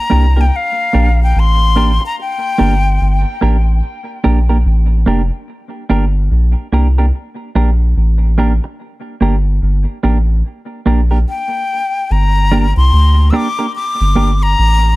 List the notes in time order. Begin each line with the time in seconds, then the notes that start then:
Already playing: A#5
0.10 C2 A#3 D4 G4 A#4
0.36 A#3 D4 G4 A#4
0.41 G5
0.56 F5
0.93 A#1 A#3 D4 G4 A#4
1.23 G5
1.36 A1 C6
1.76 A#3 D4 G4 A#4
2.01 muted clean electric guitar stroke
2.06 A#5
2.21 G5
2.58 G1 A#3 D4 G4 A#4
3.01 G1
3.41 A1 A#3 D4 G4 A#4
4.24 A#1 A#3 D4 G4 A#4
4.49 A#3 D4 G4 A#4
4.66 A1
5.06 F1 A#3 D4 G4 A#4
5.90 G1 A#3 D4 G4 A#4
6.31 A#1
6.73 C2 A#3 D4 G4 A#4
6.98 A#3 D4 G4 A#4
7.55 A#1 A#3 D4 G4 A#4
7.97 A1
8.38 A#3 D4 G4 A#4
8.64 muted clean electric guitar stroke
9.21 G1 A#3 D4 G4 A#4
9.62 G1
10.03 A1 A#3 D4 G4 A#4
10.86 A#1 A#3 D4 G4 A#4
11.11 A#3 D4 G4 A#4
11.29 G5
12.11 G1 A#5
12.51 A#3 D4 G4 A#4
12.77 C2 C6
12.93 D2
13.30 A#3 D4 G4 A#4 E6
13.36 D6
13.59 A#3 D4 G4 A#4
13.76 D6
14.01 G1
14.16 A#3 D4 G4 A#4
14.43 A#5
14.59 A1